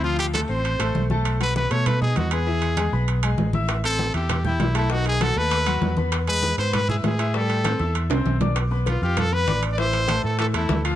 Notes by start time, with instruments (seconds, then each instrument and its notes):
Already playing: fingered electric bass D2
0.03 grand piano F3 F4 F5, trumpet F4, high conga
0.19 trumpet G4, high conga, high timbale
0.34 grand piano A3 A4 A5, trumpet A4, high conga, high timbale, low timbale
0.49 fingered electric bass A1, grand piano C4 C5 C6, trumpet C5, high conga
0.65 high conga, high timbale
0.79 fingered electric bass A1, grand piano A3 A4 A5, high conga, high timbale
0.95 fingered electric bass B1, high conga, low timbale
1.10 grand piano A3 A4 A5, high conga
1.25 high conga, high timbale
1.40 grand piano F#3 F#4 F#5, trumpet B4, high conga, high timbale
1.56 trumpet B4, high conga, low timbale
1.71 fingered electric bass B2, grand piano A3 A4 A5, trumpet C#5, high conga, high timbale
1.86 trumpet B4, high conga, low conga, high timbale
2.01 grand piano D#4 D#5 D#6, trumpet G#4, high conga, low conga
2.16 fingered electric bass E2, trumpet F#4, high conga, high timbale, low timbale
2.31 grand piano B3 B4 B5, trumpet G#4, high timbale
2.47 grand piano E3 E4 E5, high conga
2.62 high conga, high timbale
2.77 grand piano G#3 G#4 G#5, high conga, high timbale, low timbale
2.92 fingered electric bass B1, grand piano B3 B4 B5, high conga
3.08 high conga, high timbale
3.23 grand piano G#3 G#4 G#5, high conga, high timbale
3.38 fingered electric bass A1, high conga, low timbale
3.53 grand piano E4 E5 E6, high conga
3.69 high bongo, high timbale
3.84 grand piano C4 C5 C6, trumpet A4, high bongo, high conga, high timbale
3.99 high bongo, high conga, low timbale
4.14 fingered electric bass E2, grand piano E4 E5 E6, trumpet G4, high conga, high timbale
4.29 high bongo, high conga, low conga, high timbale
4.44 trumpet E4, grand piano G4 G5 G6, high bongo, high conga, low conga
4.60 fingered electric bass B1, high bongo, low bongo, high conga, high timbale, low timbale
4.74 grand piano A3 A4 A5, trumpet E4, high bongo, high timbale
4.90 grand piano D#3 D#4 D#5, trumpet F#4, high bongo, high conga
5.06 trumpet G#4, high bongo, high conga, high timbale
5.21 grand piano F#3 F#4 F#5, trumpet A4, high bongo, high conga, high timbale, low timbale
5.36 fingered electric bass D#2, grand piano A3 A4 A5, trumpet B4, high conga
5.51 high bongo, high conga, high timbale
5.66 grand piano F#3 F#4 F#5, high bongo, high conga, high timbale
5.82 fingered electric bass E2, high bongo, low bongo, high conga, low timbale
5.97 grand piano B3 B4 B5, high bongo, high conga
6.12 high bongo, high conga, high timbale
6.27 grand piano G#3 G#4 G#5, trumpet B4, high bongo, high conga, high timbale
6.43 high bongo, high conga, low timbale
6.58 fingered electric bass G#2, grand piano B3 B4 B5, trumpet C5, high conga, high timbale
6.73 trumpet B4, high bongo, high conga, low conga, high timbale
6.88 grand piano E4 E5 E6, trumpet G#4, high bongo, high conga, low conga
7.04 fingered electric bass A2, trumpet G#4, high bongo, low bongo, high conga, high timbale, low timbale
7.19 grand piano E4 E5 E6, high bongo, high timbale
7.34 grand piano G3 G4 G5, trumpet A4, high bongo, high conga
7.49 high bongo, high conga, high timbale
7.64 grand piano C4 C5 C6, high bongo, high conga, high timbale, low timbale
7.79 fingered electric bass E2, grand piano E4 E5 E6, high bongo, high conga
7.95 high conga, high timbale
8.10 fingered electric bass C2, grand piano C4 C5 C6, low bongo, high conga, high timbale
8.25 fingered electric bass B1, high conga, high timbale
8.40 grand piano D4 D5 D6, low bongo, high conga, low timbale
8.56 high bongo, high conga, high timbale
8.71 grand piano B3 B4 B5, high bongo, high conga
8.86 trumpet F4, high bongo, high conga, high timbale
9.02 fingered electric bass F2, grand piano F4 F5 F6, trumpet G4, high bongo, high conga
9.17 trumpet A4, high bongo, high conga, low conga, high timbale
9.32 grand piano B3 B4 B5, trumpet B4, high bongo, high conga
9.47 fingered electric bass A1, grand piano D4 D5 D6, high bongo, low bongo, high conga, high timbale
9.63 high timbale
9.72 trumpet D5
9.78 grand piano E3 E4 E5, trumpet C5, high bongo, high conga
9.93 high bongo, high conga, high timbale
10.08 grand piano A3 A4 A5, high bongo, high conga, high timbale
10.23 fingered electric bass A2, trumpet A4, high bongo, high conga
10.38 grand piano E3 E4 E5, trumpet A4, high bongo, high conga, high timbale
10.54 fingered electric bass E2, grand piano A3 A4 A5, trumpet E4, high conga, high timbale
10.69 fingered electric bass D2, high bongo, low bongo, high conga, low timbale
10.85 grand piano F3 F4 F5, high bongo, high timbale